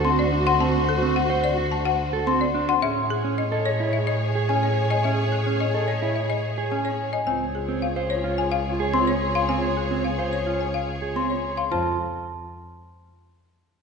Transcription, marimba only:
0.19 0.37 D5 medium
0.47 0.65 F#5 medium
0.60 0.78 A5 medium
0.89 1.06 A4 medium
1.16 1.34 F#5 medium
1.44 1.62 D5 medium
1.72 1.90 A5 medium
1.85 2.03 F#5 medium
2.41 2.59 D5 medium
2.69 2.87 F#5 medium
2.82 3.01 E5 medium
3.10 3.28 G#4 medium
3.38 3.56 D#5 medium
3.66 3.84 C#5 medium
3.93 4.11 E5 medium
4.07 4.25 D#5 medium
4.63 4.81 C#5 medium
4.90 5.09 D#5 medium
5.04 5.23 E5 medium
5.32 5.50 G#4 medium
5.60 5.78 D#5 medium
5.88 6.06 C#5 medium
6.16 6.34 E5 medium
6.30 6.48 D#5 medium
6.85 7.03 C#5 medium
7.13 7.31 D#5 medium
7.27 7.45 G#5 medium
7.55 7.73 G#4 soft
7.82 8.00 F5 medium
8.10 8.28 C#5 medium
8.38 8.56 G#5 medium
8.52 8.70 F5 medium
9.07 9.26 C#5 medium
9.35 9.53 F5 medium
9.49 9.67 G#5 medium
9.77 9.95 G#4 soft
10.04 10.23 F5 soft
10.33 10.51 C#5 medium
10.61 10.78 G#5 soft
10.74 10.92 F5 medium
11.30 11.48 C#5 soft
11.57 11.75 F5 soft
11.72 11.97 C5 medium

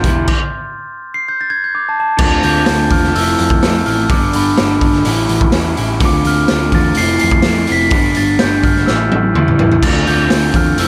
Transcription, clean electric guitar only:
0.04 0.26 E3 medium
0.04 0.26 G3 medium
0.04 0.26 B3 loud
0.04 0.27 E4 loud
2.17 2.65 D3 medium
2.17 2.45 A3 loud
2.17 2.43 C4 loud
2.17 2.41 F4 loud
2.43 2.66 A3 medium
2.43 2.67 C4 medium
2.43 2.68 F4 medium
2.66 3.13 D3 medium
2.66 2.92 A3 loud
2.66 2.90 C4 medium
2.66 2.88 F4 loud
2.90 3.14 A3 medium
2.90 3.13 C4 medium
2.90 3.12 F4 medium
3.14 3.60 F3 medium
3.14 3.61 A3 medium
3.14 3.63 C4 medium
3.14 3.63 E4 medium
3.62 4.08 F3 medium
3.62 3.87 A3 medium
3.62 3.86 C4 medium
3.62 3.84 E4 medium
3.85 4.09 A3 medium
3.85 4.09 C4 medium
3.85 4.08 E4 medium
4.09 4.55 G2 medium
4.09 4.56 D3 medium
4.09 4.34 G3 medium
4.09 4.33 B3 loud
4.09 4.31 D4 loud
4.32 4.57 G3 medium
4.32 4.58 B3 medium
4.32 4.58 D4 medium
4.57 5.03 G2 loud
4.57 5.04 D3 medium
4.57 4.83 G3 loud
4.57 4.81 B3 loud
4.57 4.80 D4 loud
4.81 5.04 G3 medium
4.81 5.04 B3 medium
4.81 5.04 D4 medium
5.03 5.76 A2 medium
5.03 5.51 E3 medium
5.03 5.52 G3 loud
5.03 5.53 C#4 medium
5.03 5.55 E4 loud
5.53 5.99 E3 medium
5.53 5.78 G3 medium
5.53 5.76 C#4 medium
5.53 5.74 E4 loud
5.76 6.00 G3 medium
5.76 6.00 C#4 medium
5.76 5.99 E4 medium
6.00 6.47 D3 loud
6.00 6.26 A3 loud
6.00 6.25 C4 medium
6.00 6.23 F4 loud
6.24 6.49 A3 medium
6.24 6.50 C4 medium
6.24 6.50 F4 medium
6.48 6.95 D3 medium
6.48 6.76 A3 loud
6.48 6.74 C4 loud
6.48 6.72 F4 loud
6.73 6.96 A3 medium
6.73 6.96 C4 medium
6.73 6.95 F4 medium
6.96 7.43 F3 medium
6.96 7.44 A3 loud
6.96 7.46 C4 medium
6.96 7.47 E4 medium
7.44 7.90 F3 medium
7.44 7.70 A3 medium
7.44 7.67 C4 medium
7.44 7.66 E4 medium
7.67 7.92 A3 medium
7.67 7.91 C4 medium
7.67 7.90 E4 medium
7.91 8.38 G2 medium
7.91 8.39 D3 medium
7.91 8.17 G3 loud
7.91 8.15 B3 loud
7.91 8.13 D4 loud
8.14 8.39 G3 medium
8.14 8.41 B3 medium
8.14 8.41 D4 medium
8.39 8.85 G2 medium
8.39 8.86 D3 loud
8.39 8.65 G3 loud
8.39 8.63 B3 loud
8.39 8.61 D4 loud
8.63 8.87 G3 medium
8.63 8.86 B3 medium
8.63 8.85 D4 medium
8.87 9.58 A2 medium
8.87 9.33 E3 medium
8.87 9.34 G3 medium
8.87 9.35 C#4 medium
8.87 9.36 E4 loud
9.34 9.80 E3 medium
9.34 9.60 G3 medium
9.34 9.59 C#4 medium
9.34 9.57 E4 medium
9.58 9.82 G3 medium
9.58 9.81 C#4 medium
9.58 9.81 E4 medium
9.82 10.28 D3 medium
9.82 10.07 A3 loud
9.82 10.06 C4 loud
9.82 10.04 F4 loud
10.05 10.29 A3 medium
10.05 10.30 C4 medium
10.05 10.31 F4 medium
10.29 10.76 D3 loud
10.29 10.55 A3 loud
10.29 10.54 C4 loud
10.29 10.52 F4 loud
10.53 10.77 A3 medium
10.53 10.77 C4 medium
10.53 10.76 F4 medium
10.78 10.88 F3 medium
10.78 10.88 A3 medium
10.78 10.88 C4 loud
10.78 10.88 E4 medium

